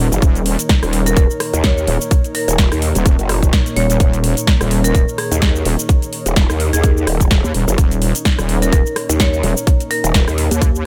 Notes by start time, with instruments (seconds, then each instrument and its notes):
Already playing: analog synth pad A#3 D#4 A#4, ambient pad D#4 A#4 C#5
0.12 wobble bass F#1, cabasa
0.22 wobble bass D#1, kick, closed hi-hat, cabasa
0.35 closed hi-hat, cabasa
0.46 open hi-hat
0.59 closed hi-hat, cabasa
0.69 kick, snare, closed hi-hat, cabasa
0.83 wobble bass D#1, cross-stick, open hi-hat, cabasa
0.93 open hi-hat
1.06 marimba A#4, closed hi-hat, cabasa
1.17 marimba A#4, kick, closed hi-hat, cabasa
1.30 cabasa
1.40 cross-stick, open hi-hat
1.53 wobble bass D#2, closed hi-hat, cabasa
1.64 marimba C#5, kick, snare, closed hi-hat, cabasa
1.77 marimba C#5, cabasa
1.87 wobble bass D#1, open hi-hat
2.01 cabasa
2.11 kick, closed hi-hat, cabasa
2.24 closed hi-hat, cabasa
2.35 marimba A#4, open hi-hat
2.48 wobble bass D#1, closed hi-hat, cabasa
2.58 kick, snare, closed hi-hat, cabasa
2.72 wobble bass D#2, cross-stick, open hi-hat, cabasa
2.82 open hi-hat
2.95 wobble bass D#1, closed hi-hat, cabasa
3.06 kick, closed hi-hat, cabasa
3.19 wobble bass F#1, closed hi-hat, cabasa
3.29 cross-stick, open hi-hat
3.43 kick, closed hi-hat, cabasa
3.53 kick, snare, closed hi-hat, cabasa
3.66 closed hi-hat, cabasa
3.76 wobble bass D#1, marimba C#5, open hi-hat
3.90 closed hi-hat, cabasa
4.00 wobble bass D#1, analog synth pad C#5, kick, closed hi-hat, cabasa
4.13 closed hi-hat, cabasa
4.24 open hi-hat
4.37 closed hi-hat, cabasa
4.47 kick, snare, closed hi-hat, cabasa
4.61 wobble bass D#1, cross-stick, open hi-hat, cabasa
4.71 open hi-hat
4.84 marimba A#4, closed hi-hat, cabasa
4.95 marimba A#4, kick, closed hi-hat, cabasa
5.08 cabasa
5.18 marimba G#4, cross-stick, open hi-hat
5.32 wobble bass D#2, closed hi-hat, cabasa
5.42 kick, snare, closed hi-hat, cabasa
5.56 cabasa
5.65 wobble bass D#1, open hi-hat
5.79 cabasa
5.89 kick, closed hi-hat, cabasa
6.02 closed hi-hat, cabasa
6.13 open hi-hat
6.26 wobble bass D#1, closed hi-hat, cabasa
6.36 kick, snare, closed hi-hat, cabasa
6.50 wobble bass D#2, cross-stick, open hi-hat, cabasa
6.60 open hi-hat
6.73 wobble bass D#2, marimba G#4, closed hi-hat, cabasa
6.84 kick, closed hi-hat, cabasa
6.97 cabasa
7.07 wobble bass D#1, cross-stick, open hi-hat
7.20 kick, closed hi-hat, cabasa
7.31 kick, snare, closed hi-hat, cabasa
7.44 wobble bass D#2, cabasa
7.54 wobble bass D#1, open hi-hat
7.68 wobble bass F#1, cabasa
7.78 wobble bass D#1, kick, closed hi-hat, cabasa
7.91 closed hi-hat, cabasa
8.02 open hi-hat
8.15 closed hi-hat, cabasa
8.25 kick, snare, closed hi-hat, cabasa
8.39 wobble bass D#1, cross-stick, open hi-hat, cabasa
8.49 open hi-hat
8.62 marimba A#4, closed hi-hat, cabasa
8.73 marimba A#4, kick, closed hi-hat, cabasa
8.86 cabasa
8.96 cross-stick, open hi-hat
9.09 wobble bass D#2, closed hi-hat, cabasa
9.20 marimba C#5, kick, snare, closed hi-hat, cabasa
9.33 marimba C#5, cabasa
9.43 wobble bass D#1, open hi-hat
9.57 cabasa
9.67 kick, closed hi-hat, cabasa
9.80 closed hi-hat, cabasa
9.91 marimba A#4, open hi-hat
10.04 wobble bass D#1, closed hi-hat, cabasa
10.14 kick, snare, closed hi-hat, cabasa
10.28 wobble bass D#2, cross-stick, open hi-hat, cabasa
10.38 open hi-hat
10.51 wobble bass D#2, closed hi-hat, cabasa
10.62 kick, closed hi-hat, cabasa
10.75 cabasa